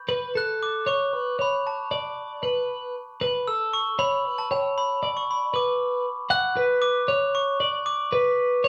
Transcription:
0.09 clean electric guitar B4
0.35 clean electric guitar A4, glockenspiel F#6
0.63 glockenspiel D6
0.86 clean electric guitar C#5, glockenspiel C#6
1.13 clean electric guitar B4
1.39 clean electric guitar C#5, glockenspiel B5
1.67 glockenspiel A5
1.91 clean electric guitar D5
2.43 clean electric guitar B4
3.21 clean electric guitar B4
3.48 clean electric guitar A4, glockenspiel E6
3.73 glockenspiel C#6
3.99 clean electric guitar C#5, glockenspiel B5
4.25 clean electric guitar B4
4.38 glockenspiel A5
4.51 clean electric guitar C#5, glockenspiel G5
4.78 glockenspiel B5
5.03 clean electric guitar D5
5.17 glockenspiel C#6
5.31 glockenspiel B5
5.54 clean electric guitar B4, glockenspiel D6
6.30 clean electric guitar F#5, glockenspiel F#6
6.57 clean electric guitar B4
6.82 glockenspiel D6
7.08 clean electric guitar C#5
7.35 glockenspiel C#6
7.60 clean electric guitar D5
7.86 glockenspiel D6
8.13 clean electric guitar B4
8.64 clean electric guitar C#5

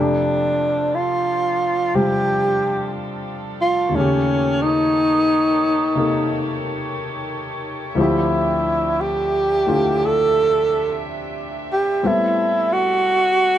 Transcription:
Already playing: grand piano F2 C3 A3 D4 G4, string section F3 D4 G4 A4, alto saxophone D4
0.95 alto saxophone F4
1.94 grand piano C3 G3 C4 F4, alto saxophone G4
3.62 alto saxophone F4
3.89 grand piano D#2 A#2
3.94 grand piano C#3 A3, string section D#3 C#5, alto saxophone C#4
4.00 grand piano G4
4.62 alto saxophone D#4
5.95 grand piano C3 A#3 D#4 A4
7.95 grand piano D2 A2 F3 C4 E4, string section C3 D4
7.99 alto saxophone E4, grand piano G4, string section E5
9.01 alto saxophone G4
9.66 grand piano A2 D3 A3 D4 F4
10.05 alto saxophone A4
11.73 alto saxophone G4
11.99 string section G3 A4
12.03 grand piano A2 G3 B3 C4 A4, alto saxophone E4
12.73 alto saxophone F#4

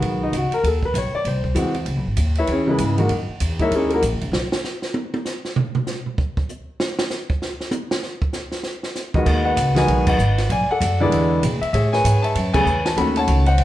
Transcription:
Already playing: grand piano D#3 G#3 B3 F#4
0.02 upright bass B1, kick, ride
0.23 grand piano D#4
0.33 upright bass C#2, kick, hi-hat pedal, ride
0.37 grand piano F#4
0.52 grand piano A#4, ride
0.63 upright bass D#2, kick, ride
0.67 grand piano A4
0.83 grand piano B4, kick
0.94 upright bass B1, kick, hi-hat pedal, ride
0.98 grand piano C#5
1.12 grand piano D5, muted upright bass stroke
1.25 upright bass C2, grand piano C5, kick, ride
1.44 kick
1.55 upright bass E2, grand piano E3 G#3 C4 F#4, kick, hi-hat pedal, ride
1.74 ride
1.85 upright bass C#2, kick, ride
1.96 upright bass B1
2.06 upright bass G#1
2.17 upright bass D#2, kick, hi-hat pedal, ride
2.35 grand piano E4 C#5 E5, ride
2.40 grand piano B4
2.47 upright bass E2, kick, ride
2.52 grand piano C#4 E4 G#4 C#5
2.67 grand piano C#3 G#3 B3 E4 B4
2.71 grand piano G#4
2.78 upright bass G#2, kick, hi-hat pedal, ride
2.98 grand piano D#3 G#3 A#3 F#4, ride
3.09 upright bass F#2, kick, ride
3.28 muted upright bass stroke
3.40 upright bass E2, kick, hi-hat pedal, ride
3.59 grand piano G#3 A#3 D#4 E4 A#4 C#5 E5, kick, ride
3.71 upright bass D#2, kick, ride
3.75 grand piano C#4 G#4 A#4 C#5
3.90 grand piano A#3 E4 F#4 A#4, ride
4.02 upright bass A#1, kick, hi-hat pedal, ride
4.12 upright bass F#1
4.21 upright bass E1, ride
4.32 upright bass B1, snare
4.52 snare
4.64 snare, hi-hat pedal
4.82 snare
4.94 high tom
5.14 high tom
5.25 snare, hi-hat pedal
5.45 snare
5.56 floor tom
5.75 floor tom
5.87 snare, hi-hat pedal
6.06 floor tom
6.18 kick
6.37 kick
6.49 hi-hat pedal
6.80 snare
6.99 snare
7.10 snare, hi-hat pedal
7.30 kick
7.42 snare
7.61 snare
7.71 hi-hat pedal, high tom
7.91 snare
8.03 snare
8.22 kick
8.33 snare, hi-hat pedal
8.52 snare
8.63 snare
8.83 snare
8.95 snare, hi-hat pedal
9.14 grand piano D#3 G#3 B3 F#4 D#5, kick
9.26 upright bass D#2, grand piano F#4 B4 D#5, kick, crash
9.45 grand piano B4 D#5 F#5
9.56 upright bass C#2, kick, hi-hat pedal, ride
9.75 grand piano D#3 G#3 B3 F#4 B4 D#5 G#5, snare, ride
9.88 upright bass B1, kick, ride
10.07 grand piano B4 D#5 F#5, kick, crash
10.18 upright bass G#1, hi-hat pedal
10.38 snare, ride
10.49 upright bass B1, grand piano D5 G#5, kick, ride
10.68 grand piano A4 D5 F#5, muted upright bass stroke
10.80 upright bass F#2, kick, hi-hat pedal, ride
11.00 grand piano D3 G#3 B3 E4 G#4 B4 D5
11.11 upright bass E2, kick, ride
11.43 upright bass B2, kick, hi-hat pedal, ride
11.61 grand piano E5, muted upright bass stroke, ride
11.73 upright bass A2, grand piano G#4 C#5 E5, kick, ride
11.93 grand piano B4 C#5 G#5, snare
12.04 upright bass G#2, kick, hi-hat pedal, ride
12.22 grand piano C#5 E5 A5, ride
12.35 upright bass F#2, kick, ride
12.54 grand piano C#3 A3 B3 G#4 B4 C#5 G#5, kick, crash
12.66 upright bass E2, hi-hat pedal
12.86 grand piano A5, snare, ride
12.97 upright bass D#2, grand piano D#3 A3 C#4 F#4 F#5 B5, kick, ride
13.16 grand piano C#5 F#5 A5, ride
13.27 upright bass C#2, kick, hi-hat pedal, ride
13.46 grand piano C5 D#5 F#5, ride
13.58 upright bass G#1, kick, ride

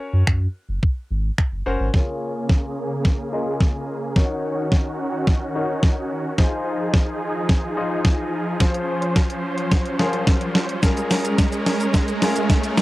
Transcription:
Already playing: grand piano C#4 F#4 A#4 C#5
0.13 sub bass F#2
0.27 sub bass F#2, finger snap, kick
0.69 sub bass F#1
0.83 kick
1.11 sub bass G#1
1.38 finger snap, kick
1.52 sub bass F#1
1.66 sub bass F#1, grand piano C#4 F#4 A#4 C5
1.80 sub bass G#1
1.93 supersaw synth C#3 A#3 G#4, grand piano F4 G#4 C#5, kick, snare, riser
2.49 kick, snare
3.05 kick, snare
3.33 grand piano F4 G#4 A#4 D#5
3.60 kick, snare
4.16 supersaw synth D#3 C#4 F#4, grand piano D#4 F#4 A#4 C#5, kick, snare
4.72 kick, snare
5.27 kick, snare
5.55 grand piano D#4 F#4 A#4 C#5
5.83 kick, snare
6.38 supersaw synth F3 D#4 G#4, grand piano D#4 F4 G#4 C5, kick, snare
6.94 kick, snare
7.49 kick, snare
7.77 grand piano D#4 F4 G#4 D#5
8.05 kick, snare
8.60 grand piano F3 C#4 F4 G#4 C5, supersaw synth C#4 C5, kick, snare, closed hi-hat
8.75 closed hi-hat
9.02 closed hi-hat
9.16 kick, snare, closed hi-hat
9.30 closed hi-hat
9.58 closed hi-hat
9.71 kick, snare, closed hi-hat
9.86 closed hi-hat
9.99 grand piano F3 C#4 F4 G#4 A#4, snare
10.13 closed hi-hat
10.27 kick, snare, closed hi-hat
10.41 closed hi-hat
10.55 snare
10.69 closed hi-hat
10.82 supersaw synth G#3 C#4 A#4, grand piano C#4 F4 G#4 A#4, kick, snare, closed hi-hat, shaker
10.97 closed hi-hat, shaker
11.11 snare, open hi-hat, shaker
11.25 closed hi-hat, shaker
11.38 kick, snare, closed hi-hat, shaker
11.53 closed hi-hat, shaker
11.66 snare, open hi-hat, shaker
11.80 closed hi-hat, shaker
11.94 kick, snare, closed hi-hat, shaker
12.08 closed hi-hat, shaker
12.22 grand piano C#4 F4 G#4 A#4, snare, open hi-hat, shaker
12.36 closed hi-hat, shaker
12.49 kick, snare, closed hi-hat, shaker
12.63 closed hi-hat, shaker
12.77 snare, open hi-hat, shaker

